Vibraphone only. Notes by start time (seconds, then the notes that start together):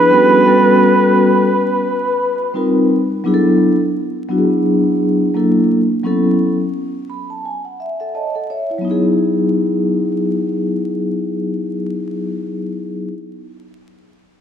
Already playing: F3 D4 E4 G#4
0.10 G3 B3 C#4 F#4 A4
0.44 G3 B3 C#4 F#4 A4
2.54 G3 C4 D#4 F4 A#4
3.24 F#3 B3 D4 E4 G#4
3.34 A4
4.29 F#3 B3 D4 E4 F#4
4.38 G#4
5.34 F#3 A#3 D4 E4 A4
6.04 F#3 B3 C#4 E4 A4
7.10 B5
7.30 A5
7.45 G#5
7.65 F#5
7.80 E5
8.00 A4 E5 F#5
8.15 C#5 D#5 A5
8.35 A4 F#5
8.50 C#5 E5
8.70 E4 C#5
8.78 F#3 B3
8.85 D#4 E4
8.91 G#4